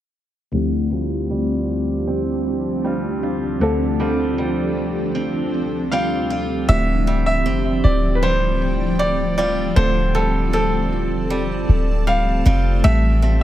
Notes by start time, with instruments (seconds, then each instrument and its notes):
0.52 fm electric piano D2 F3 A3 C4 E4 G4, steel-string acoustic guitar D3, ambient pad F3 C4 D4 G4
0.92 steel-string acoustic guitar G3 C4 F4
1.30 steel-string acoustic guitar G3
2.07 steel-string acoustic guitar C4
2.84 steel-string acoustic guitar G3 C4 F4
3.23 steel-string acoustic guitar F4
3.60 fm electric piano D2 F3 A3 C4 F4 A4, steel-string acoustic guitar D3
4.00 steel-string acoustic guitar G3 C4 F4
4.38 steel-string acoustic guitar G3
5.15 steel-string acoustic guitar C4
5.92 steel-string acoustic guitar G3 C4 F4, grand piano F5
6.30 steel-string acoustic guitar F4
6.67 808-style bass D1, steel-string acoustic guitar D3, fm electric piano F3 A3 C4 E4 G4, ambient pad F3 C4 D5 G5, grand piano E5
7.07 steel-string acoustic guitar G3
7.26 grand piano E5
7.46 808-style bass F1, steel-string acoustic guitar C4
7.84 808-style bass D1, grand piano D5
8.15 grand piano B4
8.23 steel-string acoustic guitar G3, grand piano C5
8.99 steel-string acoustic guitar G3, grand piano D5
9.38 steel-string acoustic guitar G3 C4 F4, grand piano D5
9.75 808-style bass D1, steel-string acoustic guitar D3, fm electric piano F3 A3 C4 F4 A4, grand piano C5, ambient pad A5
10.15 steel-string acoustic guitar G3, grand piano A4
10.53 steel-string acoustic guitar C4, grand piano A4
11.11 808-style bass E1
11.30 steel-string acoustic guitar G3
11.69 808-style bass D1
12.07 steel-string acoustic guitar G3, grand piano F5
12.46 808-style bass F1, steel-string acoustic guitar G3 C4 F4
12.83 808-style bass A1, fm electric piano E3 G3 A3 C4 G4, steel-string acoustic guitar A3, ambient pad G4 B5, grand piano E5
13.22 steel-string acoustic guitar C4